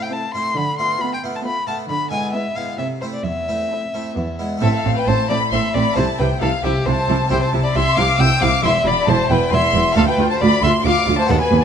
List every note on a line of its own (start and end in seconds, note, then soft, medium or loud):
0.00 0.22 A3 soft
0.00 0.22 C4 soft
0.00 0.22 E4 soft
0.00 0.14 G5 medium
0.12 0.45 C4 medium
0.12 0.45 E4 medium
0.12 0.46 A4 medium
0.12 0.34 A5 medium
0.34 0.50 A3 soft
0.34 0.51 C4 soft
0.34 0.51 E4 soft
0.34 0.58 C6 medium
0.56 0.91 D3 medium
0.56 0.91 D3 soft
0.56 0.78 B5 medium
0.79 1.11 A3 soft
0.79 1.11 B3 soft
0.79 1.11 F4 soft
0.79 1.02 C6 medium
1.01 1.34 B3 medium
1.01 1.34 F4 medium
1.01 1.34 A4 medium
1.01 1.12 B5 medium
1.13 1.21 G5 medium
1.24 1.55 A3 soft
1.24 1.56 B3 soft
1.24 1.56 F4 soft
1.35 1.39 A5 medium
1.45 1.78 B3 medium
1.45 1.79 F4 medium
1.45 1.79 A4 medium
1.45 1.67 B5 medium
1.67 1.83 A3 soft
1.67 1.84 B3 soft
1.67 1.84 F4 soft
1.67 1.75 A5 medium
1.89 2.24 D3 medium
1.89 2.24 D3 soft
1.89 2.10 B5 medium
2.11 2.43 G#3 soft
2.11 2.43 B3 soft
2.11 2.44 E4 soft
2.11 2.32 G#5 medium
2.33 2.68 B3 medium
2.33 2.67 E4 medium
2.33 2.68 G#4 medium
2.33 2.57 E5 medium
2.56 2.72 G#3 soft
2.56 2.73 B3 soft
2.56 2.73 E4 soft
2.56 2.78 F5 medium
2.78 3.15 C3 medium
2.78 3.14 C3 soft
2.78 3.13 C4 medium
2.78 3.13 E4 medium
2.78 3.14 A4 medium
2.78 2.87 E5 medium
3.01 3.19 A3 soft
3.01 3.19 C4 soft
3.01 3.19 E4 soft
3.01 3.06 C5 medium
3.13 3.25 D5 medium
3.23 3.60 E2 soft
3.23 3.62 E2 medium
3.23 4.39 E5 medium
3.48 3.81 A3 soft
3.48 3.82 C4 soft
3.48 3.82 E4 soft
3.70 4.05 C4 medium
3.70 4.05 E4 medium
3.70 4.05 A4 medium
3.94 4.11 A3 soft
3.94 4.11 C4 soft
3.94 4.11 E4 soft
4.16 4.52 E2 soft
4.16 4.53 E2 medium
4.16 4.50 B3 medium
4.16 4.51 E4 medium
4.16 4.51 G#4 medium
4.39 4.56 G#3 soft
4.39 4.56 B3 soft
4.39 4.56 E4 soft
4.57 5.90 A3 medium
4.57 5.91 C4 medium
4.57 5.92 E4 medium
4.62 4.70 A1 medium
4.62 4.82 A2 medium
4.62 4.70 A2 medium
4.62 4.70 C4 medium
4.62 4.72 A4 medium
4.62 4.73 E5 loud
4.62 4.73 E5 medium
4.73 4.95 A4 medium
4.73 4.97 F5 loud
4.73 4.97 F5 medium
4.84 4.93 A1 medium
4.84 5.05 A2 medium
4.84 4.93 A2 medium
4.84 4.93 C4 medium
4.96 5.08 B4 medium
4.96 5.08 G5 medium
5.06 5.15 A1 medium
5.06 5.15 A2 medium
5.06 5.27 A2 medium
5.06 5.16 C4 medium
5.06 5.29 C5 medium
5.06 5.29 A5 loud
5.06 5.30 A5 medium
5.29 5.38 A1 medium
5.29 5.37 A2 medium
5.29 5.50 A2 medium
5.29 5.38 C4 medium
5.29 5.37 D5 medium
5.29 5.52 B5 loud
5.29 5.52 B5 medium
5.51 5.60 A1 medium
5.51 5.60 A2 medium
5.51 5.72 A2 medium
5.51 5.61 C4 medium
5.51 5.76 E5 medium
5.51 5.73 C6 loud
5.51 5.60 C6 medium
5.74 5.82 A1 medium
5.74 5.95 A2 medium
5.74 5.83 A2 medium
5.74 5.83 C4 medium
5.74 5.95 D5 medium
5.74 5.96 B5 loud
5.74 5.96 B5 medium
5.93 6.05 C2 medium
5.93 6.04 C3 medium
5.93 7.25 A3 medium
5.93 7.26 C4 medium
5.93 7.26 E4 medium
5.93 6.05 E4 medium
5.93 6.04 C5 medium
5.93 6.18 A5 loud
5.93 6.19 A5 loud
5.98 6.17 C3 medium
6.19 6.27 C2 medium
6.19 6.28 C3 medium
6.19 6.40 C3 medium
6.19 6.28 E4 medium
6.19 6.27 B4 medium
6.19 6.42 G5 medium
6.19 6.27 G5 loud
6.41 6.50 C2 medium
6.41 6.62 C3 medium
6.41 6.50 C3 medium
6.41 6.49 E4 medium
6.41 6.50 A4 medium
6.41 6.64 F5 medium
6.41 6.64 F5 loud
6.63 6.72 C2 medium
6.63 6.72 C3 medium
6.63 6.84 C3 medium
6.63 6.72 E4 medium
6.63 6.87 G4 medium
6.63 6.72 E5 loud
6.63 6.86 E5 medium
6.86 6.95 C2 medium
6.86 7.06 C3 medium
6.86 6.95 C3 medium
6.86 6.94 E4 medium
6.86 7.30 C5 medium
6.86 7.30 A5 loud
6.86 7.31 A5 loud
7.09 7.17 C2 medium
7.09 7.29 C3 medium
7.09 7.17 C3 medium
7.09 7.17 E4 medium
7.28 7.39 C2 medium
7.28 7.51 C3 medium
7.28 7.40 C3 medium
7.28 8.59 C4 medium
7.28 8.59 E4 medium
7.28 7.39 E4 medium
7.28 7.41 C5 medium
7.28 7.42 G5 loud
7.28 7.36 G5 loud
7.41 7.49 C5 medium
7.41 7.64 A5 medium
7.41 7.65 A5 loud
7.53 7.62 C2 medium
7.53 7.61 C3 medium
7.53 7.73 C3 medium
7.53 7.61 E4 medium
7.63 7.77 D5 medium
7.63 7.75 B5 medium
7.63 7.76 B5 loud
7.74 7.84 C2 medium
7.74 7.83 C3 medium
7.74 7.95 C3 medium
7.74 7.84 E4 medium
7.74 7.99 E5 loud
7.74 7.96 C6 loud
7.74 7.97 C6 loud
7.95 8.06 C2 medium
7.95 8.05 C3 medium
7.95 8.17 C3 medium
7.95 8.05 E4 medium
7.95 8.22 F5 loud
7.95 8.19 D6 loud
7.95 8.20 D6 loud
8.18 8.28 C2 medium
8.18 8.27 C3 medium
8.18 8.40 C3 medium
8.18 8.27 E4 medium
8.18 8.44 G5 loud
8.18 8.41 E6 loud
8.41 8.49 C2 medium
8.41 8.49 C3 medium
8.41 8.62 C3 medium
8.41 8.50 E4 medium
8.41 8.64 F5 loud
8.41 8.64 D6 loud
8.62 8.72 E1 medium
8.62 8.72 E2 medium
8.62 8.85 E2 medium
8.62 9.92 C4 medium
8.62 9.93 E4 medium
8.62 8.72 E4 medium
8.62 8.89 E5 loud
8.62 8.86 C6 loud
8.62 8.72 C6 loud
8.85 8.94 E1 medium
8.85 8.94 E2 medium
8.85 9.07 E2 medium
8.85 8.93 E4 medium
8.85 9.10 D5 loud
8.85 9.08 B5 loud
9.06 9.16 E1 medium
9.06 9.16 E2 medium
9.06 9.29 E2 medium
9.06 9.16 E4 medium
9.06 9.33 C5 loud
9.06 9.30 A5 loud
9.06 9.17 A5 loud
9.29 9.38 E1 medium
9.29 9.38 E2 medium
9.29 9.51 E2 medium
9.29 9.39 E4 medium
9.29 9.55 B4 loud
9.29 9.37 G5 loud
9.29 9.52 G5 medium
9.52 9.60 E1 medium
9.52 9.61 E2 medium
9.52 9.73 E2 medium
9.52 9.61 E4 medium
9.52 9.96 E5 loud
9.52 9.96 C6 loud
9.52 9.97 C6 loud
9.74 9.82 E1 medium
9.74 9.94 E2 medium
9.74 9.82 E2 medium
9.74 9.84 E4 medium
9.92 11.23 A3 medium
9.92 11.24 F4 medium
9.92 11.25 A4 medium
9.92 10.08 F5 loud
9.92 10.07 F5 loud
9.96 10.16 D2 medium
9.96 10.04 D2 medium
9.96 10.05 D2 loud
9.96 10.05 F4 medium
9.96 10.01 A4 loud
10.07 10.30 B4 medium
10.07 10.30 G5 medium
10.07 10.30 G5 loud
10.18 10.26 D2 medium
10.18 10.39 D2 medium
10.18 10.27 F4 medium
10.30 10.42 C5 medium
10.30 10.41 A5 medium
10.30 10.35 A5 loud
10.40 10.61 D2 medium
10.40 10.49 D2 medium
10.40 10.49 F4 medium
10.40 10.63 D5 loud
10.40 10.62 B5 loud
10.40 10.63 B5 loud
10.62 10.70 D2 medium
10.62 10.71 D2 medium
10.62 10.83 D2 medium
10.62 10.71 F4 medium
10.62 10.72 E5 loud
10.62 10.85 C6 loud
10.62 10.72 C6 loud
10.85 10.93 D2 medium
10.85 11.06 D2 medium
10.85 10.93 F4 medium
10.85 11.18 F5 loud
10.85 11.19 D6 loud
10.85 11.18 D6 loud
11.07 11.15 D2 medium
11.07 11.16 D2 medium
11.07 11.28 D2 medium
11.07 11.15 F4 medium
11.18 11.32 C5 medium
11.18 11.30 A5 medium
11.18 11.25 A5 loud
11.25 11.64 B3 medium
11.25 11.64 F#4 medium
11.25 11.64 A4 medium
11.25 11.40 F#5 loud
11.29 11.37 D#2 medium
11.29 11.49 D#2 medium
11.29 11.38 D#2 loud
11.29 11.38 B3 medium
11.29 11.41 A4 loud
11.29 11.36 F#5 loud
11.40 11.64 B4 loud
11.40 11.62 G#5 medium
11.40 11.63 G#5 loud
11.51 11.59 D#2 medium
11.51 11.64 D#2 medium
11.51 11.60 D#2 medium
11.51 11.60 B3 medium